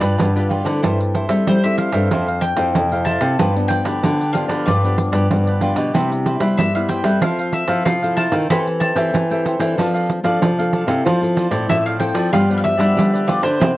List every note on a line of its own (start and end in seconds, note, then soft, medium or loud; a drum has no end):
0.00 0.16 G2 medium
0.00 0.16 G3 medium
0.00 0.29 D4 medium
0.00 0.29 F4 medium
0.00 0.34 G4 medium
0.00 0.29 B4 medium
0.00 0.33 B4 medium
0.00 0.33 D5 medium
0.00 pandeiro medium
0.19 0.60 G2 loud
0.19 0.80 D3 medium
0.19 pandeiro medium
0.36 0.63 D4 medium
0.36 0.63 F4 medium
0.36 0.49 G4 soft
0.36 0.63 B4 medium
0.36 0.50 B4 soft
0.36 0.50 D5 medium
0.36 pandeiro soft
0.50 0.65 F4 medium
0.50 0.66 G4 medium
0.50 0.65 B4 medium
0.50 0.64 D5 medium
0.50 pandeiro medium
0.65 0.80 D3 medium
0.65 1.25 C4 medium
0.65 1.25 E4 medium
0.65 0.82 G4 soft
0.65 1.25 A4 medium
0.65 0.82 B4 soft
0.65 0.81 D5 soft
0.65 pandeiro medium
0.82 1.24 G2 medium
0.82 1.44 G3 medium
0.82 0.98 E4 medium
0.82 0.98 A4 medium
0.82 0.98 C5 medium
0.82 0.99 E5 medium
0.82 pandeiro medium
1.00 muted cavaquinho stroke soft
1.00 pandeiro soft
1.14 1.30 E4 soft
1.14 1.29 A4 soft
1.14 1.29 C5 soft
1.14 1.28 E5 soft
1.14 pandeiro medium
1.29 1.44 G3 medium
1.29 1.57 C4 medium
1.29 1.57 E4 medium
1.29 1.57 A4 medium
1.29 1.62 A4 medium
1.29 1.61 C5 medium
1.29 1.61 E5 medium
1.29 pandeiro medium
1.47 2.08 G3 soft
1.47 1.88 G3 medium
1.47 1.62 C5 medium
1.47 pandeiro medium
1.64 1.91 C4 medium
1.64 1.91 E4 medium
1.64 1.91 A4 medium
1.64 1.78 A4 soft
1.64 1.78 C5 soft
1.64 1.77 E5 medium
1.64 1.79 E5 medium
1.64 pandeiro soft
1.78 1.94 E4 soft
1.78 1.94 A4 medium
1.78 1.93 C5 soft
1.78 1.92 E5 soft
1.78 2.39 F5 medium
1.78 pandeiro medium
1.92 2.08 G2 medium
1.92 2.54 C4 medium
1.92 2.54 A4 medium
1.92 2.10 A4 medium
1.92 2.09 C5 medium
1.92 2.09 E5 medium
1.92 pandeiro medium
2.11 2.52 F2 medium
2.11 2.72 F3 medium
2.11 2.26 E4 medium
2.11 2.27 A4 medium
2.11 2.27 C5 medium
2.11 2.26 F5 medium
2.11 pandeiro medium
2.28 2.42 A4 soft
2.28 2.42 C5 soft
2.28 2.42 F5 medium
2.28 pandeiro soft
2.41 3.04 G5 medium
2.41 muted cavaquinho stroke soft
2.41 pandeiro medium
2.57 2.71 F2 medium
2.57 2.85 C4 medium
2.57 2.85 E4 medium
2.57 2.86 A4 medium
2.57 2.90 A4 medium
2.57 2.89 C5 medium
2.57 2.89 F5 medium
2.57 pandeiro medium
2.75 3.16 F2 medium
2.75 3.36 C3 medium
2.75 pandeiro medium
2.91 3.34 C4 medium
2.91 3.34 E4 medium
2.91 3.35 A4 medium
2.91 3.05 A4 soft
2.91 3.06 C5 soft
2.91 3.06 F5 soft
2.91 pandeiro soft
3.05 3.21 E4 medium
3.05 3.21 A4 medium
3.05 3.20 C5 medium
3.05 3.19 F5 medium
3.05 3.68 A5 loud
3.05 pandeiro medium
3.20 3.36 C3 loud
3.20 3.37 A4 soft
3.20 3.37 C5 soft
3.20 3.37 F5 soft
3.20 pandeiro medium
3.39 4.00 G2 medium
3.39 3.80 G2 medium
3.39 3.49 F3 medium
3.39 3.49 B3 soft
3.39 3.49 D4 medium
3.39 3.54 F4 medium
3.39 3.54 G4 medium
3.39 3.54 B4 medium
3.39 3.55 D5 medium
3.39 pandeiro medium
3.56 3.98 F3 medium
3.56 3.99 B3 medium
3.56 3.99 D4 medium
3.56 muted cavaquinho stroke soft
3.56 pandeiro soft
3.68 3.85 F4 soft
3.68 3.85 G4 soft
3.68 3.84 B4 soft
3.68 3.83 D5 medium
3.68 4.33 G5 medium
3.68 pandeiro medium
3.84 4.00 D3 medium
3.84 4.17 G4 medium
3.84 4.17 B4 medium
3.84 4.16 D5 medium
3.84 pandeiro medium
4.03 4.44 D3 medium
4.03 4.64 D3 soft
4.03 4.22 F3 soft
4.03 4.22 B3 soft
4.03 4.22 D4 medium
4.03 pandeiro medium
4.20 4.33 G4 soft
4.20 4.34 B4 soft
4.20 4.34 D5 soft
4.20 pandeiro soft
4.33 4.64 F3 medium
4.33 4.65 B3 medium
4.33 4.65 D4 medium
4.33 4.49 F4 soft
4.33 4.49 G4 soft
4.33 4.48 B4 soft
4.33 4.47 D5 medium
4.33 4.67 F5 medium
4.33 pandeiro medium
4.48 4.63 D3 medium
4.48 4.65 G4 medium
4.48 4.65 B4 medium
4.48 4.64 D5 medium
4.48 pandeiro medium
4.66 5.08 G2 medium
4.66 5.28 G2 soft
4.66 4.82 F4 medium
4.66 4.82 G4 medium
4.66 4.82 B4 medium
4.66 5.58 D5 medium
4.66 4.83 D5 medium
4.66 pandeiro medium
4.83 5.26 F3 medium
4.83 5.26 B3 medium
4.83 5.26 D4 medium
4.83 4.97 G4 soft
4.83 4.97 B4 soft
4.83 4.98 D5 soft
4.83 pandeiro soft
4.98 muted cavaquinho stroke soft
4.98 pandeiro medium
5.12 5.27 G2 medium
5.12 5.45 G4 medium
5.12 5.45 B4 medium
5.12 5.44 D5 medium
5.12 pandeiro medium
5.31 5.71 G2 medium
5.31 5.91 D3 medium
5.31 5.57 F3 medium
5.31 5.58 B3 soft
5.31 5.58 D4 medium
5.31 pandeiro medium
5.47 5.61 G4 soft
5.47 5.61 B4 soft
5.47 5.62 D5 medium
5.47 pandeiro soft
5.61 5.92 F3 medium
5.61 5.92 B3 medium
5.61 5.92 D4 medium
5.61 5.77 F4 medium
5.61 5.76 G4 medium
5.61 5.75 B4 medium
5.61 5.74 D5 medium
5.61 pandeiro medium
5.76 5.91 B2 medium
5.76 5.93 G4 soft
5.76 5.92 B4 soft
5.76 5.92 D5 soft
5.76 pandeiro medium
5.94 6.55 C3 medium
5.94 6.35 C3 medium
5.94 6.37 G3 medium
5.94 6.37 B3 soft
5.94 6.38 E4 medium
5.94 6.09 G4 medium
5.94 6.10 B4 medium
5.94 6.09 C5 medium
5.94 6.10 E5 medium
5.94 pandeiro medium
6.12 muted cavaquinho stroke soft
6.12 pandeiro soft
6.26 6.41 G4 soft
6.26 6.41 B4 soft
6.26 6.41 C5 soft
6.26 6.39 E5 medium
6.26 pandeiro medium
6.40 6.55 G3 medium
6.40 6.69 G3 medium
6.40 6.69 B3 medium
6.40 6.69 E4 medium
6.40 6.73 B4 medium
6.40 6.73 C5 medium
6.40 6.72 E5 medium
6.40 pandeiro medium
6.57 7.19 G2 soft
6.57 6.99 G3 medium
6.57 6.73 E5 medium
6.57 pandeiro medium
6.75 7.02 G3 medium
6.75 7.02 B3 medium
6.75 7.02 E4 medium
6.75 6.89 B4 soft
6.75 6.89 C5 soft
6.75 6.89 E5 soft
6.75 6.80 F5 medium
6.75 pandeiro soft
6.89 7.05 G4 soft
6.89 7.04 B4 soft
6.89 7.05 C5 soft
6.89 7.03 E5 medium
6.89 7.19 G5 medium
6.89 pandeiro medium
7.04 7.19 G3 medium
7.04 7.64 C4 medium
7.04 7.64 A4 medium
7.04 7.21 B4 medium
7.04 7.21 C5 medium
7.04 7.20 E5 medium
7.04 pandeiro medium
7.21 7.63 F3 medium
7.21 7.83 F3 medium
7.21 7.37 E4 medium
7.21 7.38 A4 medium
7.21 7.38 C5 medium
7.21 7.52 F5 medium
7.21 7.38 F5 medium
7.21 pandeiro medium
7.39 7.53 A4 soft
7.39 7.53 C5 soft
7.39 7.53 F5 medium
7.39 pandeiro soft
7.52 7.83 E5 medium
7.52 muted cavaquinho stroke soft
7.52 pandeiro medium
7.68 7.82 F3 medium
7.68 7.96 C4 medium
7.68 7.96 E4 medium
7.68 7.96 A4 medium
7.68 8.01 A4 medium
7.68 8.00 C5 medium
7.68 8.00 F5 medium
7.68 pandeiro medium
7.85 8.47 C3 medium
7.85 8.27 F3 medium
7.85 8.15 F5 medium
7.85 pandeiro medium
8.02 8.45 C4 medium
8.02 8.45 E4 medium
8.02 8.46 A4 medium
8.02 8.16 A4 soft
8.02 8.17 C5 soft
8.02 8.17 F5 soft
8.02 pandeiro soft
8.16 8.32 E4 medium
8.16 8.32 A4 medium
8.16 8.31 C5 medium
8.16 8.30 F5 medium
8.16 8.50 A5 medium
8.16 pandeiro medium
8.32 8.46 D#3 medium
8.32 8.48 A4 soft
8.32 8.48 C5 soft
8.32 8.48 F5 soft
8.32 pandeiro medium
8.50 9.11 E3 medium
8.50 8.91 E3 medium
8.50 8.93 C4 medium
8.50 8.93 G4 medium
8.50 8.65 A4 medium
8.50 8.93 A4 medium
8.50 8.65 C5 medium
8.50 8.65 E5 medium
8.50 8.66 G5 medium
8.50 8.59 B5 loud
8.50 pandeiro medium
8.67 muted cavaquinho stroke soft
8.67 pandeiro soft
8.80 8.96 A4 soft
8.80 8.97 C5 soft
8.80 8.96 E5 soft
8.80 8.94 G5 soft
8.80 10.05 A5 medium
8.80 pandeiro medium
8.95 9.10 E3 medium
8.95 9.24 C4 medium
8.95 9.24 G4 medium
8.95 9.24 A4 medium
8.95 9.29 C5 medium
8.95 9.28 E5 medium
8.95 9.27 G5 medium
8.95 pandeiro medium
9.14 9.54 E3 medium
9.14 9.75 E3 soft
9.14 pandeiro medium
9.30 9.57 C4 medium
9.30 9.57 G4 medium
9.30 9.57 A4 medium
9.30 9.45 C5 soft
9.30 9.45 E5 soft
9.30 9.45 G5 soft
9.30 pandeiro soft
9.45 9.60 A4 soft
9.45 9.61 C5 soft
9.45 9.60 E5 medium
9.45 9.59 G5 medium
9.45 pandeiro medium
9.59 9.74 E3 medium
9.59 10.19 C4 medium
9.59 10.20 D4 medium
9.59 10.20 A4 medium
9.59 9.77 C5 medium
9.59 9.76 E5 medium
9.59 9.76 G5 medium
9.59 pandeiro medium
9.77 10.38 F3 medium
9.77 10.19 F3 loud
9.77 9.92 D4 medium
9.77 9.93 A4 medium
9.77 9.93 D5 medium
9.77 9.93 F5 medium
9.77 pandeiro medium
9.94 10.09 A4 soft
9.94 10.09 D5 soft
9.94 10.09 F5 soft
9.94 pandeiro soft
10.10 muted cavaquinho stroke soft
10.10 pandeiro medium
10.23 10.38 F3 medium
10.23 10.51 C4 medium
10.23 10.51 D4 medium
10.23 10.52 A4 medium
10.23 10.57 A4 medium
10.23 10.56 D5 medium
10.23 10.56 F5 medium
10.23 pandeiro medium
10.41 11.02 C3 medium
10.41 10.82 F3 loud
10.41 pandeiro medium
10.58 10.85 C4 medium
10.58 10.85 D4 medium
10.58 10.85 A4 medium
10.58 10.72 A4 soft
10.58 10.73 D5 soft
10.58 10.73 F5 medium
10.58 pandeiro soft
10.73 10.88 D4 medium
10.73 10.88 A4 medium
10.73 10.87 D5 medium
10.73 10.86 F5 medium
10.73 pandeiro medium
10.87 11.02 C3 medium
10.87 11.20 C4 medium
10.87 11.21 E4 medium
10.87 11.21 A4 medium
10.87 11.04 A4 soft
10.87 11.04 D5 soft
10.87 11.03 F5 soft
10.87 pandeiro medium
11.05 11.66 F3 medium
11.05 11.46 F3 medium
11.05 11.20 F4 medium
11.05 11.20 A4 medium
11.05 11.21 C5 medium
11.05 11.21 D5 medium
11.05 pandeiro medium
11.21 11.48 C4 medium
11.21 11.48 E4 medium
11.21 11.49 A4 medium
11.21 pandeiro soft
11.36 11.51 F4 medium
11.36 11.52 A4 soft
11.36 11.50 C5 medium
11.36 11.50 D5 medium
11.36 pandeiro medium
11.50 11.66 A2 medium
11.50 11.95 C4 medium
11.50 11.95 E4 medium
11.50 11.95 A4 medium
11.50 11.84 A4 medium
11.50 11.83 C5 medium
11.50 11.83 D5 medium
11.50 pandeiro medium
11.68 12.10 A2 medium
11.68 12.30 F3 soft
11.68 11.85 E5 medium
11.68 pandeiro medium
11.86 12.00 A4 soft
11.86 12.00 C5 soft
11.86 12.00 D5 soft
11.86 11.99 F5 medium
11.86 pandeiro soft
11.99 12.30 C4 medium
11.99 12.30 E4 medium
11.99 12.15 F4 soft
11.99 12.30 A4 medium
11.99 12.15 A4 soft
11.99 12.14 C5 soft
11.99 12.13 D5 medium
11.99 12.32 G5 medium
11.99 pandeiro medium
12.14 12.29 F3 medium
12.14 12.31 A4 soft
12.14 12.31 C5 medium
12.14 12.30 D5 medium
12.14 pandeiro medium
12.33 12.94 G2 medium
12.33 12.44 F3 medium
12.33 12.74 G3 loud
12.33 12.44 B3 soft
12.33 12.44 D4 medium
12.33 12.48 F4 medium
12.33 12.48 G4 medium
12.33 12.48 B4 medium
12.33 12.48 D5 medium
12.33 12.56 F5 loud
12.33 pandeiro medium
12.49 12.76 F3 medium
12.49 12.76 B3 medium
12.49 12.77 D4 medium
12.49 12.62 G4 soft
12.49 12.63 B4 soft
12.49 12.63 D5 medium
12.49 pandeiro soft
12.58 12.63 F5 medium
12.63 13.30 E5 medium
12.63 muted cavaquinho stroke soft
12.63 pandeiro medium
12.77 13.23 F3 medium
12.77 12.93 G3 medium
12.77 13.23 B3 medium
12.77 13.23 D4 medium
12.77 13.11 G4 medium
12.77 13.11 B4 medium
12.77 13.10 D5 medium
12.77 pandeiro medium
12.96 13.58 D3 medium
12.96 13.38 G3 medium
12.96 pandeiro medium
13.13 13.27 G4 soft
13.13 13.27 B4 soft
13.13 13.28 D5 soft
13.13 pandeiro soft
13.27 13.49 F3 medium
13.27 13.49 B3 medium
13.27 13.49 D4 medium
13.27 13.43 F4 medium
13.27 13.43 G4 medium
13.27 13.42 B4 medium
13.27 13.42 D5 medium
13.27 13.41 D5 medium
13.27 pandeiro medium
13.42 13.57 D3 medium
13.42 13.60 G4 soft
13.42 13.59 B4 soft
13.42 13.77 C5 medium
13.42 13.59 D5 soft
13.42 pandeiro medium
13.60 13.73 C3 medium
13.60 13.71 B3 medium
13.60 13.71 C4 medium
13.60 13.71 E4 medium
13.60 13.71 B4 medium
13.60 13.71 C5 medium
13.60 13.71 E5 medium
13.60 pandeiro loud